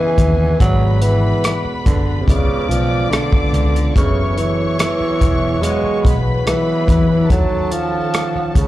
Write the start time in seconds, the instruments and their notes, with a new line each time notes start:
Already playing: tonewheel organ C#3 B3 E4 D#5, tine electric piano C#3 C#4 E4 B4 F#5, tenor saxophone E3, string section G#4 G#5
0.18 fingered electric bass D#2, kick, closed hi-hat
0.59 fingered electric bass G#1, tonewheel organ B2 G#3 B3 F#4, tenor saxophone F#3, tine electric piano G#3 G#4 B4 D5 F#5, string section B4 B5, kick, closed hi-hat
1.01 tenor saxophone E3, closed hi-hat
1.44 cross-stick, closed hi-hat
1.65 muted fingered electric bass stroke
1.85 fingered electric bass F#1, tenor saxophone D3, kick, closed hi-hat
2.22 tenor saxophone C3
2.27 fingered electric bass C#2, tenor saxophone C#3, tine electric piano C#3 G#3 B4 D5 E5, tonewheel organ C#4 F4, string section D5 D6, kick, closed hi-hat
2.36 tine electric piano F5
2.48 muted fingered electric bass stroke
2.69 fingered electric bass B1, tenor saxophone F3, closed hi-hat
3.10 tenor saxophone D3, cross-stick, closed hi-hat
3.33 kick
3.53 fingered electric bass C#2, closed hi-hat
3.76 closed hi-hat
3.96 fingered electric bass F#1, tenor saxophone C#3, tonewheel organ E3 G#5, tine electric piano F#3 F#4 G#4 A4 B4 D#5, string section C#5 C#6, kick, closed hi-hat
4.04 tine electric piano E5
4.38 tenor saxophone E3, closed hi-hat
4.79 tenor saxophone E3, cross-stick, closed hi-hat
5.00 muted fingered electric bass stroke
5.21 fingered electric bass E1, kick, closed hi-hat
5.62 tine electric piano F#3 F#4 G#4 B4 C#5 F5, tenor saxophone G#3, closed hi-hat
5.70 tine electric piano F#5
5.83 muted fingered electric bass stroke
6.05 fingered electric bass B1, string section B4 B5, kick, closed hi-hat
6.46 tenor saxophone E3, cross-stick, closed hi-hat
6.88 fingered electric bass E2, kick, closed hi-hat
7.29 fingered electric bass D#2, tonewheel organ D#3 C#4 F#5, tine electric piano D#3 D#4 A4 C#5 F#5, tenor saxophone F#3, string section A4 A5, kick, closed hi-hat
7.72 tenor saxophone F3, closed hi-hat
8.14 cross-stick, closed hi-hat
8.35 muted fingered electric bass stroke
8.55 fingered electric bass C#2, tenor saxophone C#3, kick, closed hi-hat